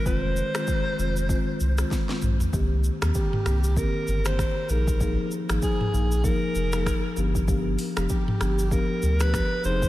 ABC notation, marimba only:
X:1
M:4/4
L:1/16
Q:"Swing 16ths" 1/4=97
K:Cm
V:1 name="Marimba"
[E,A,CF]3 [E,A,CF] z2 [E,A,CF] z [E,A,CF]3 [E,A,CF] z [E,A,CF] z2 | [E,B,CG] z2 [E,B,CG]3 [E,B,CG]2 [E,B,CG]3 [E,B,CG] z2 [F,B,EA] z | [F,B,EA] z2 [F,B,EA] z2 [F,B,EA] z [F,B,EA] z2 [F,B,EA] z2 [F,=B,DG] z | [F,=B,DG] z2 [F,B,DG]3 [F,B,DG]2 [F,B,DG]3 [F,B,DG] z2 [F,CEA] z |]